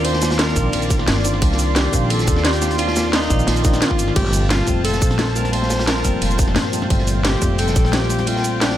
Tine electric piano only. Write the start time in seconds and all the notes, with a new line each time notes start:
Already playing: D#3 A#3 C4 D4 F4
0.03 D#3 A#3 C4 D4 F4
0.55 D#3 A#3 C4 D4 F4
1.24 D#3 A#3 C4 D4 F4
1.40 D#3 A#3 C4 D4 F4
1.92 D#3 A#3 C4 D4 F4
2.61 D#3 A#3 C4 D4 F4
2.77 D#3 A#3 C4 D4 F4
3.30 D#3 A#3 C4 F4 D5
3.63 D#3 A#3 C4 D4 F4
4.15 A#2 F3 G3 A3 C4
4.66 A#2 F3 G3 A3 C4
5.35 A#2 F3 G3 A3 C4
5.51 A#2 F3 G3 A3 C4
6.03 A#2 F3 G3 A#3 C4
6.72 A#2 F3 G3 A3 C4
6.89 A#2 F3 G3 A3 C4
7.40 A#2 F3 G3 A3 C4
8.10 A#2 F3 G3 A3 C4
8.26 A#2 F3 G3 A3 C4